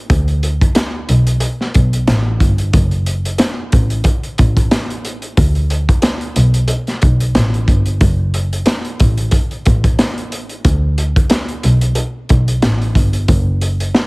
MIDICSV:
0, 0, Header, 1, 3, 480
1, 0, Start_track
1, 0, Tempo, 659341
1, 71, Time_signature, 4, 2, 24, 8
1, 10241, End_track
2, 0, Start_track
2, 0, Title_t, "Double bass"
2, 0, Program_c, 0, 43
2, 74, Note_on_c, 0, 38, 105
2, 489, Note_off_c, 0, 38, 0
2, 793, Note_on_c, 0, 35, 100
2, 1000, Note_off_c, 0, 35, 0
2, 1278, Note_on_c, 0, 35, 89
2, 1483, Note_off_c, 0, 35, 0
2, 1514, Note_on_c, 0, 33, 98
2, 1721, Note_off_c, 0, 33, 0
2, 1751, Note_on_c, 0, 31, 90
2, 1959, Note_off_c, 0, 31, 0
2, 1993, Note_on_c, 0, 30, 98
2, 2408, Note_off_c, 0, 30, 0
2, 2717, Note_on_c, 0, 33, 97
2, 2922, Note_off_c, 0, 33, 0
2, 3198, Note_on_c, 0, 33, 96
2, 3403, Note_off_c, 0, 33, 0
2, 3914, Note_on_c, 0, 38, 106
2, 4329, Note_off_c, 0, 38, 0
2, 4634, Note_on_c, 0, 35, 101
2, 4841, Note_off_c, 0, 35, 0
2, 5118, Note_on_c, 0, 35, 92
2, 5323, Note_off_c, 0, 35, 0
2, 5354, Note_on_c, 0, 33, 99
2, 5561, Note_off_c, 0, 33, 0
2, 5591, Note_on_c, 0, 31, 94
2, 5799, Note_off_c, 0, 31, 0
2, 5833, Note_on_c, 0, 30, 99
2, 6248, Note_off_c, 0, 30, 0
2, 6556, Note_on_c, 0, 33, 95
2, 6762, Note_off_c, 0, 33, 0
2, 7038, Note_on_c, 0, 33, 97
2, 7243, Note_off_c, 0, 33, 0
2, 7753, Note_on_c, 0, 38, 105
2, 8169, Note_off_c, 0, 38, 0
2, 8474, Note_on_c, 0, 35, 99
2, 8681, Note_off_c, 0, 35, 0
2, 8958, Note_on_c, 0, 35, 92
2, 9163, Note_off_c, 0, 35, 0
2, 9194, Note_on_c, 0, 33, 95
2, 9401, Note_off_c, 0, 33, 0
2, 9431, Note_on_c, 0, 31, 88
2, 9639, Note_off_c, 0, 31, 0
2, 9673, Note_on_c, 0, 30, 102
2, 10089, Note_off_c, 0, 30, 0
2, 10241, End_track
3, 0, Start_track
3, 0, Title_t, "Drums"
3, 71, Note_on_c, 9, 42, 89
3, 72, Note_on_c, 9, 36, 112
3, 144, Note_off_c, 9, 42, 0
3, 145, Note_off_c, 9, 36, 0
3, 202, Note_on_c, 9, 42, 35
3, 275, Note_off_c, 9, 42, 0
3, 313, Note_on_c, 9, 42, 71
3, 386, Note_off_c, 9, 42, 0
3, 447, Note_on_c, 9, 36, 90
3, 451, Note_on_c, 9, 42, 56
3, 520, Note_off_c, 9, 36, 0
3, 524, Note_off_c, 9, 42, 0
3, 546, Note_on_c, 9, 42, 102
3, 553, Note_on_c, 9, 40, 89
3, 555, Note_on_c, 9, 38, 109
3, 619, Note_off_c, 9, 42, 0
3, 626, Note_off_c, 9, 40, 0
3, 628, Note_off_c, 9, 38, 0
3, 791, Note_on_c, 9, 42, 85
3, 864, Note_off_c, 9, 42, 0
3, 922, Note_on_c, 9, 42, 56
3, 995, Note_off_c, 9, 42, 0
3, 1021, Note_on_c, 9, 42, 86
3, 1094, Note_off_c, 9, 42, 0
3, 1170, Note_on_c, 9, 38, 36
3, 1243, Note_off_c, 9, 38, 0
3, 1269, Note_on_c, 9, 42, 78
3, 1277, Note_on_c, 9, 36, 88
3, 1342, Note_off_c, 9, 42, 0
3, 1349, Note_off_c, 9, 36, 0
3, 1405, Note_on_c, 9, 42, 60
3, 1478, Note_off_c, 9, 42, 0
3, 1510, Note_on_c, 9, 42, 85
3, 1511, Note_on_c, 9, 40, 94
3, 1513, Note_on_c, 9, 38, 123
3, 1583, Note_off_c, 9, 42, 0
3, 1584, Note_off_c, 9, 40, 0
3, 1586, Note_off_c, 9, 38, 0
3, 1750, Note_on_c, 9, 36, 97
3, 1754, Note_on_c, 9, 42, 72
3, 1823, Note_off_c, 9, 36, 0
3, 1827, Note_off_c, 9, 42, 0
3, 1880, Note_on_c, 9, 42, 47
3, 1953, Note_off_c, 9, 42, 0
3, 1990, Note_on_c, 9, 42, 91
3, 1992, Note_on_c, 9, 36, 118
3, 2063, Note_off_c, 9, 42, 0
3, 2065, Note_off_c, 9, 36, 0
3, 2120, Note_on_c, 9, 42, 35
3, 2193, Note_off_c, 9, 42, 0
3, 2230, Note_on_c, 9, 42, 69
3, 2303, Note_off_c, 9, 42, 0
3, 2368, Note_on_c, 9, 42, 57
3, 2441, Note_off_c, 9, 42, 0
3, 2463, Note_on_c, 9, 42, 100
3, 2471, Note_on_c, 9, 40, 87
3, 2473, Note_on_c, 9, 38, 108
3, 2536, Note_off_c, 9, 42, 0
3, 2543, Note_off_c, 9, 40, 0
3, 2546, Note_off_c, 9, 38, 0
3, 2710, Note_on_c, 9, 42, 88
3, 2715, Note_on_c, 9, 36, 93
3, 2782, Note_off_c, 9, 42, 0
3, 2788, Note_off_c, 9, 36, 0
3, 2840, Note_on_c, 9, 42, 56
3, 2913, Note_off_c, 9, 42, 0
3, 2941, Note_on_c, 9, 42, 87
3, 2947, Note_on_c, 9, 36, 94
3, 3013, Note_off_c, 9, 42, 0
3, 3020, Note_off_c, 9, 36, 0
3, 3083, Note_on_c, 9, 42, 37
3, 3155, Note_off_c, 9, 42, 0
3, 3190, Note_on_c, 9, 42, 79
3, 3197, Note_on_c, 9, 36, 88
3, 3262, Note_off_c, 9, 42, 0
3, 3270, Note_off_c, 9, 36, 0
3, 3324, Note_on_c, 9, 36, 97
3, 3326, Note_on_c, 9, 42, 61
3, 3397, Note_off_c, 9, 36, 0
3, 3399, Note_off_c, 9, 42, 0
3, 3431, Note_on_c, 9, 42, 87
3, 3432, Note_on_c, 9, 40, 96
3, 3434, Note_on_c, 9, 38, 117
3, 3504, Note_off_c, 9, 40, 0
3, 3504, Note_off_c, 9, 42, 0
3, 3507, Note_off_c, 9, 38, 0
3, 3570, Note_on_c, 9, 42, 38
3, 3642, Note_off_c, 9, 42, 0
3, 3674, Note_on_c, 9, 42, 72
3, 3747, Note_off_c, 9, 42, 0
3, 3800, Note_on_c, 9, 42, 48
3, 3873, Note_off_c, 9, 42, 0
3, 3911, Note_on_c, 9, 42, 91
3, 3912, Note_on_c, 9, 36, 114
3, 3984, Note_off_c, 9, 42, 0
3, 3985, Note_off_c, 9, 36, 0
3, 4042, Note_on_c, 9, 42, 35
3, 4115, Note_off_c, 9, 42, 0
3, 4151, Note_on_c, 9, 42, 70
3, 4224, Note_off_c, 9, 42, 0
3, 4287, Note_on_c, 9, 36, 87
3, 4289, Note_on_c, 9, 42, 58
3, 4359, Note_off_c, 9, 36, 0
3, 4361, Note_off_c, 9, 42, 0
3, 4383, Note_on_c, 9, 42, 103
3, 4390, Note_on_c, 9, 40, 87
3, 4393, Note_on_c, 9, 38, 109
3, 4456, Note_off_c, 9, 42, 0
3, 4463, Note_off_c, 9, 40, 0
3, 4465, Note_off_c, 9, 38, 0
3, 4520, Note_on_c, 9, 42, 36
3, 4593, Note_off_c, 9, 42, 0
3, 4629, Note_on_c, 9, 42, 90
3, 4702, Note_off_c, 9, 42, 0
3, 4760, Note_on_c, 9, 42, 55
3, 4833, Note_off_c, 9, 42, 0
3, 4861, Note_on_c, 9, 42, 88
3, 4933, Note_off_c, 9, 42, 0
3, 5003, Note_on_c, 9, 42, 35
3, 5008, Note_on_c, 9, 38, 36
3, 5075, Note_off_c, 9, 42, 0
3, 5081, Note_off_c, 9, 38, 0
3, 5108, Note_on_c, 9, 42, 82
3, 5116, Note_on_c, 9, 36, 85
3, 5181, Note_off_c, 9, 42, 0
3, 5189, Note_off_c, 9, 36, 0
3, 5245, Note_on_c, 9, 42, 61
3, 5318, Note_off_c, 9, 42, 0
3, 5350, Note_on_c, 9, 42, 84
3, 5351, Note_on_c, 9, 40, 96
3, 5353, Note_on_c, 9, 38, 118
3, 5423, Note_off_c, 9, 42, 0
3, 5424, Note_off_c, 9, 40, 0
3, 5426, Note_off_c, 9, 38, 0
3, 5489, Note_on_c, 9, 42, 38
3, 5561, Note_off_c, 9, 42, 0
3, 5590, Note_on_c, 9, 36, 97
3, 5593, Note_on_c, 9, 42, 71
3, 5662, Note_off_c, 9, 36, 0
3, 5666, Note_off_c, 9, 42, 0
3, 5719, Note_on_c, 9, 42, 48
3, 5792, Note_off_c, 9, 42, 0
3, 5829, Note_on_c, 9, 42, 90
3, 5831, Note_on_c, 9, 36, 113
3, 5902, Note_off_c, 9, 42, 0
3, 5904, Note_off_c, 9, 36, 0
3, 6070, Note_on_c, 9, 42, 71
3, 6143, Note_off_c, 9, 42, 0
3, 6208, Note_on_c, 9, 42, 58
3, 6281, Note_off_c, 9, 42, 0
3, 6302, Note_on_c, 9, 42, 103
3, 6309, Note_on_c, 9, 40, 90
3, 6312, Note_on_c, 9, 38, 107
3, 6375, Note_off_c, 9, 42, 0
3, 6382, Note_off_c, 9, 40, 0
3, 6385, Note_off_c, 9, 38, 0
3, 6440, Note_on_c, 9, 42, 36
3, 6513, Note_off_c, 9, 42, 0
3, 6549, Note_on_c, 9, 42, 87
3, 6555, Note_on_c, 9, 36, 95
3, 6622, Note_off_c, 9, 42, 0
3, 6628, Note_off_c, 9, 36, 0
3, 6679, Note_on_c, 9, 42, 57
3, 6752, Note_off_c, 9, 42, 0
3, 6780, Note_on_c, 9, 42, 87
3, 6787, Note_on_c, 9, 36, 99
3, 6853, Note_off_c, 9, 42, 0
3, 6860, Note_off_c, 9, 36, 0
3, 6923, Note_on_c, 9, 42, 36
3, 6996, Note_off_c, 9, 42, 0
3, 7029, Note_on_c, 9, 42, 81
3, 7036, Note_on_c, 9, 36, 87
3, 7102, Note_off_c, 9, 42, 0
3, 7109, Note_off_c, 9, 36, 0
3, 7164, Note_on_c, 9, 36, 99
3, 7165, Note_on_c, 9, 42, 62
3, 7237, Note_off_c, 9, 36, 0
3, 7238, Note_off_c, 9, 42, 0
3, 7270, Note_on_c, 9, 42, 86
3, 7271, Note_on_c, 9, 40, 96
3, 7273, Note_on_c, 9, 38, 119
3, 7343, Note_off_c, 9, 42, 0
3, 7344, Note_off_c, 9, 40, 0
3, 7346, Note_off_c, 9, 38, 0
3, 7409, Note_on_c, 9, 42, 38
3, 7482, Note_off_c, 9, 42, 0
3, 7513, Note_on_c, 9, 42, 73
3, 7586, Note_off_c, 9, 42, 0
3, 7640, Note_on_c, 9, 42, 47
3, 7713, Note_off_c, 9, 42, 0
3, 7750, Note_on_c, 9, 42, 92
3, 7752, Note_on_c, 9, 36, 113
3, 7823, Note_off_c, 9, 42, 0
3, 7825, Note_off_c, 9, 36, 0
3, 7992, Note_on_c, 9, 42, 72
3, 8065, Note_off_c, 9, 42, 0
3, 8127, Note_on_c, 9, 36, 89
3, 8129, Note_on_c, 9, 42, 58
3, 8199, Note_off_c, 9, 36, 0
3, 8202, Note_off_c, 9, 42, 0
3, 8224, Note_on_c, 9, 42, 99
3, 8231, Note_on_c, 9, 40, 85
3, 8234, Note_on_c, 9, 38, 109
3, 8297, Note_off_c, 9, 42, 0
3, 8304, Note_off_c, 9, 40, 0
3, 8306, Note_off_c, 9, 38, 0
3, 8361, Note_on_c, 9, 42, 37
3, 8434, Note_off_c, 9, 42, 0
3, 8470, Note_on_c, 9, 42, 87
3, 8542, Note_off_c, 9, 42, 0
3, 8600, Note_on_c, 9, 42, 57
3, 8673, Note_off_c, 9, 42, 0
3, 8701, Note_on_c, 9, 42, 87
3, 8774, Note_off_c, 9, 42, 0
3, 8949, Note_on_c, 9, 42, 77
3, 8956, Note_on_c, 9, 36, 86
3, 9022, Note_off_c, 9, 42, 0
3, 9029, Note_off_c, 9, 36, 0
3, 9085, Note_on_c, 9, 42, 63
3, 9158, Note_off_c, 9, 42, 0
3, 9190, Note_on_c, 9, 42, 87
3, 9191, Note_on_c, 9, 40, 98
3, 9193, Note_on_c, 9, 38, 118
3, 9263, Note_off_c, 9, 42, 0
3, 9264, Note_off_c, 9, 40, 0
3, 9266, Note_off_c, 9, 38, 0
3, 9330, Note_on_c, 9, 42, 36
3, 9403, Note_off_c, 9, 42, 0
3, 9430, Note_on_c, 9, 36, 95
3, 9433, Note_on_c, 9, 42, 72
3, 9502, Note_off_c, 9, 36, 0
3, 9506, Note_off_c, 9, 42, 0
3, 9560, Note_on_c, 9, 42, 48
3, 9633, Note_off_c, 9, 42, 0
3, 9670, Note_on_c, 9, 42, 94
3, 9672, Note_on_c, 9, 36, 114
3, 9743, Note_off_c, 9, 42, 0
3, 9744, Note_off_c, 9, 36, 0
3, 9911, Note_on_c, 9, 42, 73
3, 9984, Note_off_c, 9, 42, 0
3, 10049, Note_on_c, 9, 42, 58
3, 10121, Note_off_c, 9, 42, 0
3, 10152, Note_on_c, 9, 40, 88
3, 10154, Note_on_c, 9, 38, 111
3, 10225, Note_off_c, 9, 40, 0
3, 10227, Note_off_c, 9, 38, 0
3, 10241, End_track
0, 0, End_of_file